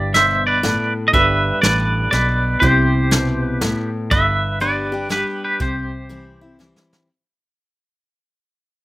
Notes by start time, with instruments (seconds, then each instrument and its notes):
Already playing: fingered electric bass G1, steel-string acoustic guitar G2, grand piano E4 G4 E5, clean electric guitar G4 D5
0.14 steel-string acoustic guitar B2, clean electric guitar C5 E5, snare, closed hi-hat
0.47 clean electric guitar B4 D5
0.63 steel-string acoustic guitar A2, snare, closed hi-hat
1.08 clean electric guitar D#5
1.12 fingered electric bass G1, steel-string acoustic guitar G2, grand piano D4 G4 B4, clean electric guitar B4 E5, kick, closed hi-hat
1.62 fingered electric bass A1, steel-string acoustic guitar A2, clean electric guitar B4 D5, snare, closed hi-hat
2.11 fingered electric bass B1, steel-string acoustic guitar B2, clean electric guitar B4 D5, snare, closed hi-hat
2.60 fingered electric bass C2, steel-string acoustic guitar C3, grand piano E4 G4 C5, clean electric guitar G4 C5, kick, closed hi-hat
3.11 steel-string acoustic guitar B2, snare, closed hi-hat
3.44 clean electric guitar B4
3.61 steel-string acoustic guitar A2, snare, closed hi-hat
4.11 fingered electric bass G1, steel-string acoustic guitar G2, clean electric guitar B4 E5, kick, closed hi-hat
4.60 steel-string acoustic guitar G3 B3 D4 G4, clean electric guitar B4 D5, closed hi-hat
4.92 steel-string acoustic guitar D4 G4
5.09 steel-string acoustic guitar G3 B3 D4 G4, clean electric guitar G4 B4, snare, closed hi-hat
5.44 clean electric guitar G4 B4
5.60 fingered electric bass C2, steel-string acoustic guitar C3, clean electric guitar G4 C5, kick, closed hi-hat
6.09 steel-string acoustic guitar E3 G3 C4 E4, closed hi-hat
6.41 steel-string acoustic guitar C4 E4
6.59 steel-string acoustic guitar E3 G3 C4 E4, snare
6.76 snare
6.93 snare